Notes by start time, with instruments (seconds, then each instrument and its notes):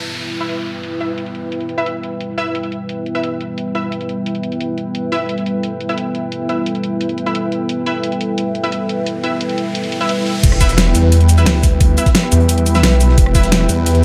Already playing: analog synth pad G3 B3 E4 B4, synth stab E4 B4 E5, ambient pad E4 B4 D5 E5 G5, downlifter
0.15 closed hi-hat
0.32 closed hi-hat
0.41 synth stab E4 B4 E5, closed hi-hat
0.49 closed hi-hat
0.66 closed hi-hat
0.83 closed hi-hat
1.00 synth stab E4 B4 E5, closed hi-hat
1.18 closed hi-hat
1.26 closed hi-hat
1.35 closed hi-hat
1.52 closed hi-hat
1.61 closed hi-hat
1.69 closed hi-hat
1.78 synth stab E4 B4 E5, closed hi-hat
1.86 closed hi-hat
2.03 closed hi-hat
2.21 closed hi-hat
2.38 synth stab E4 B4 E5, closed hi-hat
2.55 closed hi-hat
2.63 closed hi-hat
2.72 closed hi-hat
2.89 closed hi-hat
3.06 closed hi-hat
3.15 synth stab E4 B4 E5, closed hi-hat
3.23 closed hi-hat
3.41 closed hi-hat
3.58 closed hi-hat
3.75 synth stab E4 B4 E5, closed hi-hat
3.92 closed hi-hat
4.01 closed hi-hat
4.09 closed hi-hat
4.26 closed hi-hat
4.35 closed hi-hat
4.43 closed hi-hat
4.52 closed hi-hat
4.61 closed hi-hat
4.78 closed hi-hat
4.95 analog synth pad A4, closed hi-hat
5.12 synth stab E4 B4 E5, closed hi-hat
5.29 closed hi-hat
5.38 closed hi-hat
5.46 closed hi-hat
5.63 closed hi-hat
5.81 closed hi-hat
5.89 synth stab E4 B4 E5, closed hi-hat
5.98 closed hi-hat
6.15 closed hi-hat
6.32 closed hi-hat
6.49 synth stab E4 B4 E5, closed hi-hat
6.66 closed hi-hat
6.75 closed hi-hat
6.84 closed hi-hat
7.01 closed hi-hat
7.09 closed hi-hat
7.18 closed hi-hat
7.26 synth stab E4 B4 E5, closed hi-hat
7.35 closed hi-hat
7.52 closed hi-hat
7.69 closed hi-hat, riser
7.86 synth stab E4 B4 E5, closed hi-hat
8.03 closed hi-hat
8.12 closed hi-hat
8.21 closed hi-hat
8.38 closed hi-hat
8.55 closed hi-hat
8.64 synth stab E4 B4 E5, closed hi-hat
8.72 closed hi-hat
8.89 closed hi-hat
9.06 closed hi-hat
9.23 synth stab E4 B4 E5, closed hi-hat
9.41 closed hi-hat
9.49 closed hi-hat
9.58 closed hi-hat
9.75 closed hi-hat
9.84 closed hi-hat
9.92 closed hi-hat
10.01 synth stab E4 B4 E5, closed hi-hat
10.09 closed hi-hat
10.26 closed hi-hat
10.43 detuned saw bass E1, analog synth pad G3 B3 E4 B4, kick, closed hi-hat, crash, impact
10.52 cross-stick
10.61 synth stab E4 B4 E5, kick, closed hi-hat, shaker
10.69 snare, closed hi-hat, shaker
10.77 snare, closed hi-hat
10.86 cross-stick
10.95 detuned saw bass E2, closed hi-hat, shaker
11.12 closed hi-hat
11.21 closed hi-hat
11.28 closed hi-hat, shaker
11.38 synth stab E4 B4 E5, closed hi-hat, shaker
11.46 detuned saw bass D2, snare, closed hi-hat, open hi-hat
11.63 kick, snare, closed hi-hat, shaker
11.81 kick, closed hi-hat
11.97 synth stab E4 B4 E5, closed hi-hat, shaker
12.06 kick, snare, closed hi-hat, shaker
12.15 snare, closed hi-hat
12.23 cross-stick
12.31 detuned saw bass E2, closed hi-hat, shaker
12.40 closed hi-hat
12.49 closed hi-hat
12.58 closed hi-hat
12.66 closed hi-hat, shaker
12.75 synth stab E4 B4 E5, snare, closed hi-hat, shaker
12.83 detuned saw bass B1, snare, closed hi-hat
12.91 closed hi-hat
13.01 closed hi-hat, shaker
13.09 snare
13.18 detuned saw bass E1, kick, closed hi-hat
13.26 cross-stick
13.35 synth stab E4 B4 E5, kick, closed hi-hat, shaker
13.43 snare, closed hi-hat, shaker
13.52 snare, closed hi-hat
13.61 cross-stick
13.69 detuned saw bass E2, closed hi-hat, shaker
13.86 closed hi-hat
13.95 closed hi-hat